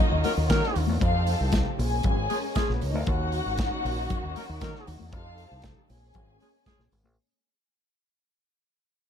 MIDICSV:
0, 0, Header, 1, 6, 480
1, 0, Start_track
1, 0, Key_signature, -6, "minor"
1, 0, Tempo, 513259
1, 949, Time_signature, 4, 2, 24, 8
1, 8504, End_track
2, 0, Start_track
2, 0, Title_t, "String section"
2, 0, Program_c, 0, 48
2, 0, Note_on_c, 0, 63, 115
2, 0, Note_on_c, 0, 75, 120
2, 671, Note_off_c, 0, 75, 0
2, 673, Note_off_c, 0, 63, 0
2, 941, Note_on_c, 0, 77, 94
2, 945, Note_on_c, 0, 65, 90
2, 1416, Note_off_c, 0, 77, 0
2, 1418, Note_off_c, 0, 65, 0
2, 1678, Note_on_c, 0, 80, 98
2, 1680, Note_on_c, 0, 68, 89
2, 2491, Note_off_c, 0, 68, 0
2, 2491, Note_off_c, 0, 80, 0
2, 2551, Note_on_c, 0, 71, 64
2, 2554, Note_on_c, 0, 59, 62
2, 2631, Note_off_c, 0, 71, 0
2, 2632, Note_off_c, 0, 59, 0
2, 2638, Note_on_c, 0, 73, 83
2, 2642, Note_on_c, 0, 61, 76
2, 2713, Note_on_c, 0, 63, 85
2, 2713, Note_on_c, 0, 75, 89
2, 2715, Note_off_c, 0, 73, 0
2, 2716, Note_off_c, 0, 61, 0
2, 2792, Note_off_c, 0, 63, 0
2, 2792, Note_off_c, 0, 75, 0
2, 2795, Note_on_c, 0, 65, 88
2, 2795, Note_on_c, 0, 77, 104
2, 2872, Note_on_c, 0, 66, 105
2, 2873, Note_off_c, 0, 65, 0
2, 2873, Note_off_c, 0, 77, 0
2, 2877, Note_on_c, 0, 78, 112
2, 4518, Note_off_c, 0, 66, 0
2, 4521, Note_off_c, 0, 78, 0
2, 4790, Note_on_c, 0, 77, 110
2, 4796, Note_on_c, 0, 65, 92
2, 5261, Note_off_c, 0, 77, 0
2, 5264, Note_off_c, 0, 65, 0
2, 5514, Note_on_c, 0, 80, 95
2, 5515, Note_on_c, 0, 68, 92
2, 6452, Note_off_c, 0, 80, 0
2, 6453, Note_off_c, 0, 68, 0
2, 8504, End_track
3, 0, Start_track
3, 0, Title_t, "Horn section"
3, 0, Program_c, 1, 61
3, 226, Note_on_c, 1, 54, 74
3, 227, Note_on_c, 1, 63, 82
3, 227, Note_on_c, 1, 70, 86
3, 303, Note_off_c, 1, 54, 0
3, 304, Note_off_c, 1, 63, 0
3, 304, Note_off_c, 1, 70, 0
3, 469, Note_on_c, 1, 70, 116
3, 471, Note_on_c, 1, 54, 92
3, 471, Note_on_c, 1, 63, 107
3, 775, Note_off_c, 1, 70, 0
3, 776, Note_off_c, 1, 54, 0
3, 776, Note_off_c, 1, 63, 0
3, 2149, Note_on_c, 1, 61, 73
3, 2150, Note_on_c, 1, 53, 78
3, 2150, Note_on_c, 1, 68, 81
3, 2226, Note_off_c, 1, 61, 0
3, 2227, Note_off_c, 1, 53, 0
3, 2227, Note_off_c, 1, 68, 0
3, 2385, Note_on_c, 1, 68, 98
3, 2388, Note_on_c, 1, 61, 102
3, 2389, Note_on_c, 1, 53, 85
3, 2540, Note_off_c, 1, 68, 0
3, 2542, Note_off_c, 1, 61, 0
3, 2543, Note_off_c, 1, 53, 0
3, 4077, Note_on_c, 1, 63, 84
3, 4078, Note_on_c, 1, 54, 73
3, 4079, Note_on_c, 1, 70, 83
3, 4152, Note_off_c, 1, 54, 0
3, 4152, Note_off_c, 1, 63, 0
3, 4153, Note_off_c, 1, 70, 0
3, 4316, Note_on_c, 1, 63, 99
3, 4317, Note_on_c, 1, 54, 90
3, 4318, Note_on_c, 1, 70, 112
3, 4620, Note_off_c, 1, 63, 0
3, 4621, Note_off_c, 1, 54, 0
3, 4621, Note_off_c, 1, 70, 0
3, 5994, Note_on_c, 1, 53, 70
3, 5994, Note_on_c, 1, 61, 82
3, 5994, Note_on_c, 1, 68, 81
3, 6069, Note_off_c, 1, 68, 0
3, 6070, Note_off_c, 1, 53, 0
3, 6070, Note_off_c, 1, 61, 0
3, 6228, Note_on_c, 1, 61, 94
3, 6229, Note_on_c, 1, 68, 107
3, 6231, Note_on_c, 1, 53, 84
3, 6382, Note_off_c, 1, 61, 0
3, 6382, Note_off_c, 1, 68, 0
3, 6383, Note_off_c, 1, 53, 0
3, 8504, End_track
4, 0, Start_track
4, 0, Title_t, "String section"
4, 0, Program_c, 2, 48
4, 0, Note_on_c, 2, 51, 85
4, 0, Note_on_c, 2, 58, 74
4, 0, Note_on_c, 2, 61, 74
4, 0, Note_on_c, 2, 65, 76
4, 0, Note_on_c, 2, 66, 84
4, 931, Note_off_c, 2, 51, 0
4, 931, Note_off_c, 2, 61, 0
4, 931, Note_off_c, 2, 65, 0
4, 931, Note_off_c, 2, 66, 0
4, 932, Note_off_c, 2, 58, 0
4, 948, Note_on_c, 2, 69, 85
4, 950, Note_on_c, 2, 53, 73
4, 951, Note_on_c, 2, 63, 65
4, 953, Note_on_c, 2, 67, 73
4, 954, Note_on_c, 2, 60, 68
4, 1662, Note_off_c, 2, 69, 0
4, 1663, Note_off_c, 2, 53, 0
4, 1664, Note_off_c, 2, 63, 0
4, 1665, Note_off_c, 2, 60, 0
4, 1665, Note_off_c, 2, 67, 0
4, 1666, Note_on_c, 2, 56, 74
4, 1668, Note_on_c, 2, 58, 82
4, 1669, Note_on_c, 2, 61, 87
4, 2857, Note_off_c, 2, 56, 0
4, 2859, Note_off_c, 2, 61, 0
4, 2868, Note_on_c, 2, 63, 78
4, 2871, Note_on_c, 2, 51, 83
4, 2871, Note_on_c, 2, 61, 77
4, 2871, Note_on_c, 2, 66, 100
4, 4759, Note_off_c, 2, 58, 0
4, 4771, Note_off_c, 2, 63, 0
4, 4772, Note_off_c, 2, 51, 0
4, 4772, Note_off_c, 2, 61, 0
4, 4772, Note_off_c, 2, 66, 0
4, 4785, Note_on_c, 2, 53, 75
4, 4787, Note_on_c, 2, 60, 73
4, 4787, Note_on_c, 2, 63, 69
4, 4787, Note_on_c, 2, 69, 90
4, 4789, Note_on_c, 2, 67, 72
4, 5501, Note_off_c, 2, 53, 0
4, 5501, Note_off_c, 2, 63, 0
4, 5501, Note_off_c, 2, 69, 0
4, 5502, Note_off_c, 2, 60, 0
4, 5503, Note_off_c, 2, 67, 0
4, 5504, Note_on_c, 2, 58, 65
4, 5506, Note_on_c, 2, 61, 90
4, 5509, Note_on_c, 2, 56, 72
4, 6694, Note_off_c, 2, 58, 0
4, 6695, Note_off_c, 2, 61, 0
4, 6697, Note_off_c, 2, 56, 0
4, 8504, End_track
5, 0, Start_track
5, 0, Title_t, "Fingered electric bass"
5, 0, Program_c, 3, 33
5, 109, Note_on_c, 3, 39, 77
5, 209, Note_off_c, 3, 39, 0
5, 350, Note_on_c, 3, 39, 83
5, 450, Note_off_c, 3, 39, 0
5, 471, Note_on_c, 3, 51, 98
5, 571, Note_off_c, 3, 51, 0
5, 712, Note_on_c, 3, 39, 86
5, 833, Note_off_c, 3, 39, 0
5, 833, Note_on_c, 3, 40, 77
5, 932, Note_off_c, 3, 40, 0
5, 950, Note_on_c, 3, 41, 99
5, 1252, Note_off_c, 3, 41, 0
5, 1315, Note_on_c, 3, 36, 92
5, 1514, Note_off_c, 3, 36, 0
5, 1674, Note_on_c, 3, 34, 97
5, 1873, Note_off_c, 3, 34, 0
5, 1915, Note_on_c, 3, 32, 96
5, 2114, Note_off_c, 3, 32, 0
5, 2521, Note_on_c, 3, 34, 82
5, 2617, Note_off_c, 3, 34, 0
5, 2642, Note_on_c, 3, 37, 94
5, 2758, Note_off_c, 3, 37, 0
5, 2758, Note_on_c, 3, 38, 80
5, 2856, Note_off_c, 3, 38, 0
5, 2876, Note_on_c, 3, 39, 106
5, 3176, Note_off_c, 3, 39, 0
5, 3236, Note_on_c, 3, 32, 82
5, 3435, Note_off_c, 3, 32, 0
5, 3599, Note_on_c, 3, 34, 84
5, 3797, Note_off_c, 3, 34, 0
5, 3961, Note_on_c, 3, 39, 70
5, 4057, Note_off_c, 3, 39, 0
5, 4203, Note_on_c, 3, 39, 85
5, 4299, Note_off_c, 3, 39, 0
5, 4319, Note_on_c, 3, 51, 87
5, 4416, Note_off_c, 3, 51, 0
5, 4563, Note_on_c, 3, 39, 101
5, 4659, Note_off_c, 3, 39, 0
5, 4682, Note_on_c, 3, 40, 72
5, 4799, Note_off_c, 3, 40, 0
5, 4799, Note_on_c, 3, 41, 101
5, 5097, Note_off_c, 3, 41, 0
5, 5157, Note_on_c, 3, 36, 88
5, 5356, Note_off_c, 3, 36, 0
5, 5516, Note_on_c, 3, 34, 97
5, 5715, Note_off_c, 3, 34, 0
5, 5756, Note_on_c, 3, 32, 101
5, 5955, Note_off_c, 3, 32, 0
5, 6353, Note_on_c, 3, 34, 83
5, 6452, Note_off_c, 3, 34, 0
5, 6474, Note_on_c, 3, 32, 92
5, 6593, Note_off_c, 3, 32, 0
5, 6593, Note_on_c, 3, 33, 78
5, 6692, Note_off_c, 3, 33, 0
5, 8504, End_track
6, 0, Start_track
6, 0, Title_t, "Drums"
6, 224, Note_on_c, 9, 46, 72
6, 231, Note_on_c, 9, 54, 55
6, 237, Note_on_c, 9, 62, 67
6, 318, Note_off_c, 9, 46, 0
6, 324, Note_off_c, 9, 54, 0
6, 330, Note_off_c, 9, 62, 0
6, 464, Note_on_c, 9, 54, 87
6, 467, Note_on_c, 9, 36, 126
6, 469, Note_on_c, 9, 42, 69
6, 474, Note_on_c, 9, 38, 111
6, 474, Note_on_c, 9, 63, 84
6, 558, Note_off_c, 9, 54, 0
6, 561, Note_off_c, 9, 36, 0
6, 562, Note_off_c, 9, 42, 0
6, 567, Note_off_c, 9, 63, 0
6, 568, Note_off_c, 9, 38, 0
6, 594, Note_on_c, 9, 38, 33
6, 688, Note_off_c, 9, 38, 0
6, 706, Note_on_c, 9, 54, 62
6, 712, Note_on_c, 9, 46, 72
6, 800, Note_off_c, 9, 54, 0
6, 806, Note_off_c, 9, 46, 0
6, 816, Note_on_c, 9, 63, 78
6, 909, Note_off_c, 9, 63, 0
6, 936, Note_on_c, 9, 62, 60
6, 948, Note_on_c, 9, 36, 101
6, 952, Note_on_c, 9, 42, 81
6, 953, Note_on_c, 9, 54, 37
6, 1029, Note_off_c, 9, 62, 0
6, 1041, Note_off_c, 9, 36, 0
6, 1045, Note_off_c, 9, 42, 0
6, 1046, Note_off_c, 9, 54, 0
6, 1186, Note_on_c, 9, 46, 65
6, 1191, Note_on_c, 9, 62, 29
6, 1196, Note_on_c, 9, 54, 53
6, 1279, Note_off_c, 9, 46, 0
6, 1284, Note_off_c, 9, 62, 0
6, 1290, Note_off_c, 9, 54, 0
6, 1420, Note_on_c, 9, 42, 62
6, 1426, Note_on_c, 9, 63, 74
6, 1428, Note_on_c, 9, 36, 121
6, 1431, Note_on_c, 9, 54, 114
6, 1437, Note_on_c, 9, 38, 127
6, 1513, Note_off_c, 9, 42, 0
6, 1519, Note_off_c, 9, 63, 0
6, 1521, Note_off_c, 9, 36, 0
6, 1524, Note_off_c, 9, 54, 0
6, 1531, Note_off_c, 9, 38, 0
6, 1679, Note_on_c, 9, 46, 68
6, 1772, Note_off_c, 9, 46, 0
6, 1902, Note_on_c, 9, 42, 68
6, 1906, Note_on_c, 9, 54, 64
6, 1909, Note_on_c, 9, 64, 100
6, 1911, Note_on_c, 9, 36, 111
6, 1996, Note_off_c, 9, 42, 0
6, 2000, Note_off_c, 9, 54, 0
6, 2003, Note_off_c, 9, 64, 0
6, 2005, Note_off_c, 9, 36, 0
6, 2151, Note_on_c, 9, 46, 72
6, 2152, Note_on_c, 9, 54, 55
6, 2161, Note_on_c, 9, 62, 69
6, 2245, Note_off_c, 9, 46, 0
6, 2246, Note_off_c, 9, 54, 0
6, 2254, Note_off_c, 9, 62, 0
6, 2388, Note_on_c, 9, 54, 99
6, 2393, Note_on_c, 9, 36, 126
6, 2396, Note_on_c, 9, 42, 71
6, 2401, Note_on_c, 9, 63, 82
6, 2402, Note_on_c, 9, 38, 112
6, 2481, Note_off_c, 9, 54, 0
6, 2487, Note_off_c, 9, 36, 0
6, 2490, Note_off_c, 9, 42, 0
6, 2495, Note_off_c, 9, 38, 0
6, 2495, Note_off_c, 9, 63, 0
6, 2522, Note_on_c, 9, 38, 36
6, 2615, Note_off_c, 9, 38, 0
6, 2631, Note_on_c, 9, 54, 53
6, 2637, Note_on_c, 9, 46, 73
6, 2724, Note_off_c, 9, 54, 0
6, 2731, Note_off_c, 9, 46, 0
6, 2745, Note_on_c, 9, 63, 80
6, 2838, Note_off_c, 9, 63, 0
6, 2865, Note_on_c, 9, 62, 48
6, 2868, Note_on_c, 9, 42, 81
6, 2872, Note_on_c, 9, 36, 117
6, 2879, Note_on_c, 9, 54, 32
6, 2959, Note_off_c, 9, 62, 0
6, 2961, Note_off_c, 9, 42, 0
6, 2966, Note_off_c, 9, 36, 0
6, 2972, Note_off_c, 9, 54, 0
6, 3107, Note_on_c, 9, 46, 57
6, 3120, Note_on_c, 9, 54, 57
6, 3122, Note_on_c, 9, 62, 30
6, 3200, Note_off_c, 9, 46, 0
6, 3213, Note_off_c, 9, 54, 0
6, 3216, Note_off_c, 9, 62, 0
6, 3344, Note_on_c, 9, 42, 62
6, 3352, Note_on_c, 9, 54, 102
6, 3355, Note_on_c, 9, 36, 116
6, 3355, Note_on_c, 9, 63, 68
6, 3362, Note_on_c, 9, 38, 127
6, 3438, Note_off_c, 9, 42, 0
6, 3445, Note_off_c, 9, 54, 0
6, 3448, Note_off_c, 9, 36, 0
6, 3448, Note_off_c, 9, 63, 0
6, 3456, Note_off_c, 9, 38, 0
6, 3605, Note_on_c, 9, 54, 38
6, 3607, Note_on_c, 9, 46, 71
6, 3699, Note_off_c, 9, 54, 0
6, 3701, Note_off_c, 9, 46, 0
6, 3834, Note_on_c, 9, 54, 62
6, 3834, Note_on_c, 9, 64, 92
6, 3835, Note_on_c, 9, 42, 61
6, 3838, Note_on_c, 9, 36, 113
6, 3927, Note_off_c, 9, 54, 0
6, 3927, Note_off_c, 9, 64, 0
6, 3929, Note_off_c, 9, 42, 0
6, 3932, Note_off_c, 9, 36, 0
6, 4078, Note_on_c, 9, 46, 68
6, 4079, Note_on_c, 9, 54, 58
6, 4090, Note_on_c, 9, 62, 65
6, 4171, Note_off_c, 9, 46, 0
6, 4172, Note_off_c, 9, 54, 0
6, 4184, Note_off_c, 9, 62, 0
6, 4311, Note_on_c, 9, 54, 97
6, 4317, Note_on_c, 9, 36, 109
6, 4321, Note_on_c, 9, 42, 78
6, 4321, Note_on_c, 9, 63, 85
6, 4326, Note_on_c, 9, 38, 115
6, 4404, Note_off_c, 9, 54, 0
6, 4410, Note_off_c, 9, 36, 0
6, 4414, Note_off_c, 9, 42, 0
6, 4414, Note_off_c, 9, 63, 0
6, 4420, Note_off_c, 9, 38, 0
6, 4446, Note_on_c, 9, 38, 31
6, 4540, Note_off_c, 9, 38, 0
6, 4556, Note_on_c, 9, 54, 52
6, 4561, Note_on_c, 9, 46, 65
6, 4650, Note_off_c, 9, 54, 0
6, 4654, Note_off_c, 9, 46, 0
6, 4669, Note_on_c, 9, 63, 70
6, 4762, Note_off_c, 9, 63, 0
6, 4792, Note_on_c, 9, 62, 60
6, 4793, Note_on_c, 9, 42, 77
6, 4794, Note_on_c, 9, 36, 107
6, 4886, Note_off_c, 9, 62, 0
6, 4887, Note_off_c, 9, 42, 0
6, 4888, Note_off_c, 9, 36, 0
6, 5028, Note_on_c, 9, 46, 57
6, 5042, Note_on_c, 9, 54, 53
6, 5122, Note_off_c, 9, 46, 0
6, 5135, Note_off_c, 9, 54, 0
6, 5257, Note_on_c, 9, 42, 67
6, 5271, Note_on_c, 9, 36, 112
6, 5275, Note_on_c, 9, 38, 118
6, 5275, Note_on_c, 9, 54, 101
6, 5277, Note_on_c, 9, 63, 73
6, 5351, Note_off_c, 9, 42, 0
6, 5364, Note_off_c, 9, 36, 0
6, 5368, Note_off_c, 9, 38, 0
6, 5369, Note_off_c, 9, 54, 0
6, 5371, Note_off_c, 9, 63, 0
6, 5515, Note_on_c, 9, 46, 69
6, 5523, Note_on_c, 9, 54, 34
6, 5608, Note_off_c, 9, 46, 0
6, 5617, Note_off_c, 9, 54, 0
6, 5741, Note_on_c, 9, 42, 58
6, 5749, Note_on_c, 9, 64, 92
6, 5751, Note_on_c, 9, 36, 105
6, 5756, Note_on_c, 9, 54, 63
6, 5834, Note_off_c, 9, 42, 0
6, 5842, Note_off_c, 9, 64, 0
6, 5844, Note_off_c, 9, 36, 0
6, 5849, Note_off_c, 9, 54, 0
6, 5990, Note_on_c, 9, 46, 67
6, 6005, Note_on_c, 9, 54, 51
6, 6006, Note_on_c, 9, 62, 61
6, 6083, Note_off_c, 9, 46, 0
6, 6098, Note_off_c, 9, 54, 0
6, 6100, Note_off_c, 9, 62, 0
6, 6231, Note_on_c, 9, 54, 93
6, 6232, Note_on_c, 9, 36, 124
6, 6235, Note_on_c, 9, 42, 69
6, 6239, Note_on_c, 9, 63, 85
6, 6241, Note_on_c, 9, 38, 104
6, 6324, Note_off_c, 9, 54, 0
6, 6325, Note_off_c, 9, 36, 0
6, 6329, Note_off_c, 9, 42, 0
6, 6332, Note_off_c, 9, 63, 0
6, 6334, Note_off_c, 9, 38, 0
6, 6362, Note_on_c, 9, 38, 35
6, 6456, Note_off_c, 9, 38, 0
6, 6472, Note_on_c, 9, 54, 56
6, 6474, Note_on_c, 9, 46, 68
6, 6566, Note_off_c, 9, 54, 0
6, 6568, Note_off_c, 9, 46, 0
6, 6583, Note_on_c, 9, 63, 76
6, 6676, Note_off_c, 9, 63, 0
6, 8504, End_track
0, 0, End_of_file